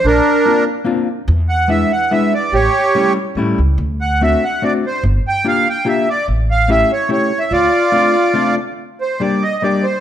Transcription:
<<
  \new Staff \with { instrumentName = "Accordion" } { \time 3/4 \key d \minor \tempo 4 = 144 <d' bes'>4. r4. | r8 fis''8 e''8 fis''8 e''8 d''8 | <g' cis''>4. r4. | r8 fis''8 e''8 fis''8 d''8 c''8 |
r8 g''8 f''8 g''8 e''8 d''8 | r8 f''8 e''8 cis''8 \tuplet 3/2 { cis''4 e''8 } | <f' d''>2~ <f' d''>8 r8 | \key g \minor r8 c''8 d''8 ees''8 d''8 c''8 | }
  \new Staff \with { instrumentName = "Hollow-body jazz guitar" } { \time 3/4 \key d \minor r4 <bes c' d' f'>8 r8 <bes c' d' f'>8 r8 | r4 <gis b d' e'>8 r8 <gis b d' e'>8 r8 | r4 <g a cis' e'>8 r8 <g a cis' e'>8 r8 | r4 <a c' d' fis'>8 r8 <a c' d' fis'>8 r8 |
r4 <bes d' f' g'>8 r8 <bes d' f' g'>8 r8 | r4 <a cis' e' g'>8 r8 <a cis' e' g'>8 r8 | r4 <a c' d' f'>8 r8 <a c' d' f'>8 r8 | \key g \minor r4 <g bes d' g'>8 r8 <g bes d' g'>8 r8 | }
  \new Staff \with { instrumentName = "Upright bass" } { \clef bass \time 3/4 \key d \minor bes,,8 r2 r8 | e,2 r4 | a,,8 r4. a,,8 cis,8 | d,2 r4 |
g,,8 r2 r8 | a,,2 r4 | d,8 r2 r8 | \key g \minor r2. | }
>>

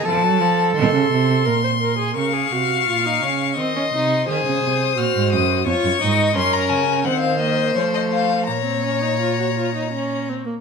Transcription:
<<
  \new Staff \with { instrumentName = "Violin" } { \time 3/4 \key bes \phrygian \tempo 4 = 85 a''4 c'''2 | des'''2 c'''4 | ees'''4 f'''8 ees'''8 des'''4 | \key bes \minor c'''16 bes''16 aes''8 ges''16 f''16 ees''8 des''16 ees''16 f''8 |
bes''2~ bes''8 r8 | }
  \new Staff \with { instrumentName = "Violin" } { \time 3/4 \key bes \phrygian r2. | f''2 ees''4 | c''2 des''8 ees''8 | \key bes \minor bes'4 c''2 |
des''2~ des''8 r8 | }
  \new Staff \with { instrumentName = "Viola" } { \time 3/4 \key bes \phrygian a'2 bes'16 c''16 bes'16 aes'16 | bes'16 aes'16 ges'8 f'16 ees'16 des'8 c'16 des'16 ees'8 | aes'4 ges'4 f'8 ees'8 | \key bes \minor des'4 c'8 bes8 a4 |
bes16 c'16 des'16 ees'16 f'16 ges'16 f'16 ees'16 des'8 c'16 bes16 | }
  \new Staff \with { instrumentName = "Cello" } { \clef bass \time 3/4 \key bes \phrygian f16 ges16 f8 ees16 des16 c8 bes,4 | des8 c8 bes,8 des8 ees8 c8 | ees16 des16 c8 bes,16 aes,16 ges,8 f,16 ges,16 aes,8 | \key bes \minor ges,8 des8 ees4 f4 |
bes,2~ bes,8 r8 | }
>>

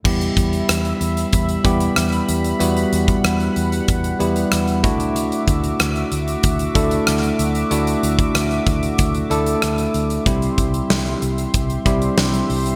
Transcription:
<<
  \new Staff \with { instrumentName = "Analog synth pad" } { \time 4/4 \key e \minor \tempo 4 = 94 << { <g b''>1~ | <g b''>2.~ <g b''>8 <fis' d'''>8~ | <fis' d'''>1~ | <fis' d'''>1 |
<g' c'''>1 | } \\ { e''1 | fis''2.~ fis''8 e''8~ | e''1~ | e''1 |
e''1 | } >> }
  \new Staff \with { instrumentName = "Tine electric piano" } { \time 4/4 \key e \minor <g b e' g'>4. r4 <g b e' g'>4 r8 | <g b e' fis'>4. r4 <g b e' g'>4 <a d' e' fis'>8~ | <a d' e' fis'>4 r4. <a d' e' a'>4 r8 | <a d' e' fis'>4. r4 <a d' e' a'>4 r8 |
<g c' e' g'>4. r4 <g c' e' g'>4 r8 | }
  \new Staff \with { instrumentName = "Fingered electric bass" } { \clef bass \time 4/4 \key e \minor e,8 e,8 e,8 e,8 e,8 e,8 e,8 e,8 | e,8 e,8 e,8 e,8 e,8 e,8 e,8 d,8~ | d,8 d,8 d,8 d,8 d,8 d,8 d,8 d,8 | d,8 d,8 d,8 d,8 d,8 d,8 d,8 d,8 |
c,8 c,8 c,8 c,8 c,8 c,8 c,8 c,8 | }
  \new DrumStaff \with { instrumentName = "Drums" } \drummode { \time 4/4 <cymc bd>16 hh16 <hh bd>16 hh16 <hh ss>16 hh16 hh16 hh16 <hh bd>16 hh16 <hh bd>16 hh16 <hh ss>16 hh16 hh16 hh16 | hh16 hh16 hh16 <hh bd>16 <hh ss>16 hh16 hh16 hh16 <hh bd>16 hh16 hh16 hh16 <hh ss>16 hh16 <hh bd>16 hh16 | hh16 hh16 <hh bd>16 hh16 <hh ss>16 hh16 hh16 hh16 <hh bd>16 hh16 <hh bd>16 hh16 <hh ss>16 hh16 hh16 hh16 | hh16 hh16 hh16 <hh bd>16 <hh ss>16 hh16 <hh bd>16 hh16 <hh bd>16 hh16 hh16 hh16 <hh ss>16 hh16 hh16 hh16 |
<hh bd>16 hh16 <hh bd>16 hh16 sn16 hh16 hh16 hh16 <hh bd>16 hh16 <hh bd>16 hh16 sn16 hh16 hho16 hh16 | }
>>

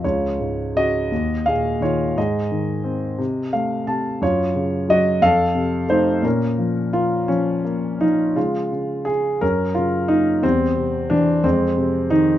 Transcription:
<<
  \new Staff \with { instrumentName = "Grand piano" } { \time 6/8 \key bes \minor \tempo 4. = 58 << { des''4 ees''4 f''8 des''8 | ees''2 f''8 a''8 | des''4 ees''8 f''4 c''8 | bes'4 f'8 des'4 ees'8 |
\key des \major f'4 aes'8 bes'8 f'8 ees'8 | c'4 d'8 c'4 ees'8 | } \\ { f'4 ges'4 aes'8 f'8 | aes'2 r4 | f'4 ges'8 a'4 ees'8 | des'2 r4 |
aes4. des'4. | g4. aes4. | } >> }
  \new Staff \with { instrumentName = "Grand piano" } { \clef bass \time 6/8 \key bes \minor des,8 aes,8 des8 ees,8 bes,8 ees8 | aes,8 ees8 c'8 c8 a8 c8 | ges,8 des8 ges8 f,8 c8 a8 | bes,8 f8 bes8 f8 bes8 f8 |
\key des \major des8 des8 des8 ges,8 des8 bes8 | e,8 c8 e8 f,8 c8 ees8 | }
>>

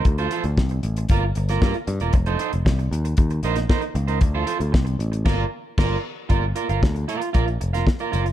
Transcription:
<<
  \new Staff \with { instrumentName = "Clean electric guitar" } { \time 4/4 \key g \minor \tempo 4 = 115 r16 <f' a' c''>16 <f' a' c''>16 r4 r16 <f' bes' d''>16 r8 <f' bes' d''>16 <f' bes' d''>16 r8 <f' bes' d''>16 | r16 <ees' a' c''>16 <ees' a' c''>16 r4. r16 <ees' bes' c''>16 r16 <ees' bes' c''>16 r8 <ees' bes' c''>16 | r16 <f' a' c''>16 <f' a' c''>16 r4 r16 <f' bes' d''>8 r8 <f' bes' d''>8 r8 | <f' bes' d''>16 r16 <f' bes' d''>16 <f' bes' f''>16 r8 <f' bes' d''>8 <f' bes' d''>16 r8 <f' bes' f''>16 r16 <f' bes' d''>16 <f' bes' d''>16 r16 | }
  \new Staff \with { instrumentName = "Picked electric bass" } { \clef bass \time 4/4 \key g \minor d,8 r16 d,16 c,8 a,,8 g,,8 g,,8 g,16 r16 g,16 e,,16 | f,,8 r16 f,,16 c,8 ees,8 ees,8 bes,,8 r8 cis,8 | d,8 r16 d,16 c,8 a,,8 g,,8 r8 g,,8 r8 | g,,8 r16 g,,16 d,8 r8 bes,,8 f,,8 r8 fis,,8 | }
  \new DrumStaff \with { instrumentName = "Drums" } \drummode { \time 4/4 <hh bd>16 hh16 hh16 hh16 <bd sn>16 hh16 hh16 hh16 <hh bd>8 hh16 <hh sn>16 <bd sn>16 hh16 hh16 hh16 | <hh bd>16 hh16 hh16 hh16 <bd sn>16 hh16 hh16 hh16 <hh bd>16 hh16 hh16 <hh sn>16 <bd sn>16 hh16 hh16 hh16 | <hh bd>8 hh16 hh16 <bd sn>16 hh16 hh16 hh16 <cymc bd sn>4 <cymc bd sn>4 | <hh bd>8 hh16 hh16 <bd sn>16 hh16 hh16 hh16 <hh bd>16 hh16 hh16 <hh sn>16 <bd sn>16 hh16 hh16 hh16 | }
>>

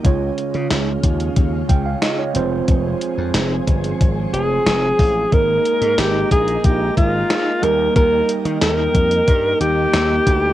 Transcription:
<<
  \new Staff \with { instrumentName = "Alto saxophone" } { \time 4/4 \key ees \major \tempo 4 = 91 r1 | r2 r8 aes'4. | bes'4 g'8 aes'8 g'8 f'4 bes'8 | bes'8 r8 bes'4. g'4. | }
  \new Staff \with { instrumentName = "Tine electric piano" } { \time 4/4 \key ees \major << { r2 r8 g''16 f''16 ees''16 des''8 r16 | r1 | r1 | r1 | } \\ { <aes des' f' des''>2.~ <aes des' f' des''>8 <aes c' f' c''>8~ | <aes c' f' c''>2.~ <aes c' f' c''>8 r8 | <aes bes ees' bes'>2.~ <aes bes ees' bes'>8 <g bes ees' bes'>8~ | <g bes ees' bes'>2.~ <g bes ees' bes'>8 r8 | } >> }
  \new Staff \with { instrumentName = "String machine" } { \time 4/4 \key ees \major <des aes f'>2.~ <des aes f'>8 <f c' aes'>8~ | <f c' aes'>1 | <aes ees' bes'>2.~ <aes ees' bes'>8 <bes ees' g'>8~ | <bes ees' g'>1 | }
  \new Staff \with { instrumentName = "Slap bass" } { \clef bass \time 4/4 \key ees \major des,8 r16 des16 des,8 ees,8 ees,8 des,8 r8 f,,8 | f,,8 r16 f,16 f,,8 g,,8 aes,,8 f,,8 f,,8 a,,8 | aes,,8 r16 aes,16 aes,,8 bes,,8 bes,,8 aes,,8 r8 ees,8 | ees,8 r16 ees16 ees,8 f,8 g,8 ees,8 ees,8 d,8 | }
  \new DrumStaff \with { instrumentName = "Drums" } \drummode { \time 4/4 <hh bd>8 hh16 hh16 <hh sn>8 <hh bd>16 hh16 <hh bd>8 <hh bd>8 <hh sn>8 hh8 | <hh bd>8 hh8 <hh sn>8 <hh bd>16 hh16 <hh bd>8 hh8 <hh sn>8 <hho bd>8 | <hh bd>8 hh16 hh16 <hh sn>8 <hh bd>16 hh16 <hh bd>8 <hh bd>8 <hh sn>8 hh8 | <hh bd>8 hh16 hh16 <hh sn>8 <hh bd>16 hh16 <hh bd>8 hh8 <hh sn>8 <hh bd>8 | }
>>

